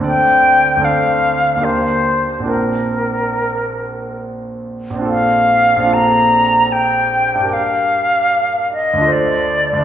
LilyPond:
<<
  \new Staff \with { instrumentName = "Flute" } { \time 3/4 \key bes \major \tempo 4 = 75 g''4 f''4 c''4 | bes'2 r4 | f''4 bes''4 g''4 | f''4. ees''8 d''4 | }
  \new Staff \with { instrumentName = "Grand piano" } { \time 3/4 \key bes \major <d, c' d' a' d''>4 <d, c' d' a' d''>4 <ees, bes d' g' bes'>4 | <bes,, c' d' f' bes'>2. | <bes,, c' d' f' a'>4 <bes,, c' d' f' a'>2 | <g, d' g' bes'>2 <d, d' f' a' c''>4 | }
>>